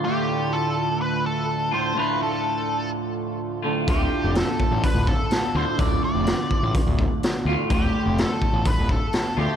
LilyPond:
<<
  \new Staff \with { instrumentName = "Lead electric guitar" } { \time 4/4 \key d \minor \tempo 4 = 126 g'4 a'4 b'8 a'4 c''8 | b'8 a'4. r2 | g'4 a'4 b'8 a'4 c''8 | d''8 d''4. r2 |
g'4 a'4 b'8 a'4 g'8 | }
  \new Staff \with { instrumentName = "French horn section" } { \time 4/4 \key d \minor <d f a d' f'>1~ | <d f a d' f'>1~ | <d f a d' f'>1~ | <d f a d' f'>1~ |
<d f a d' f'>1 | }
  \new Staff \with { instrumentName = "Clean electric guitar" } { \clef bass \time 4/4 \key d \minor <d, a, d a f'>2.~ <d, a, d a f'>8 <d, a, d a f'>8 | <d, a, d a f'>2.~ <d, a, d a f'>8 <d, a, d a f'>8 | <d, a, d a f'>2.~ <d, a, d a f'>8 <d, a, d a f'>8 | <d, a, d a f'>2.~ <d, a, d a f'>8 <d, a, d a f'>8 |
<d, a, d a f'>2.~ <d, a, d a f'>8 <d, a, d a f'>8 | }
  \new Staff \with { instrumentName = "Picked electric bass" } { \clef bass \time 4/4 \key d \minor r1 | r1 | d,,8 r16 f,,8 r8 a,,16 r16 d,,8 r8. d,16 r16 | d,,8 r16 f,,8 r8 a,,16 r16 d,,8 r8. d,16 r16 |
d,,8 r16 f,,8 r8 a,,16 r16 d,,8 r8. d,16 r16 | }
  \new DrumStaff \with { instrumentName = "Drums" } \drummode { \time 4/4 r4 r4 r4 r4 | r4 r4 r4 r4 | <hho bd>4 <hho sn>8 bd8 <hho bd>8 bd8 <hho sn>4 | <hho bd>4 <hho sn>8 bd8 <hho bd>8 bd8 <hho sn>4 |
<hho bd>4 <hho sn>8 bd8 <hho bd>8 bd8 <hho sn>4 | }
>>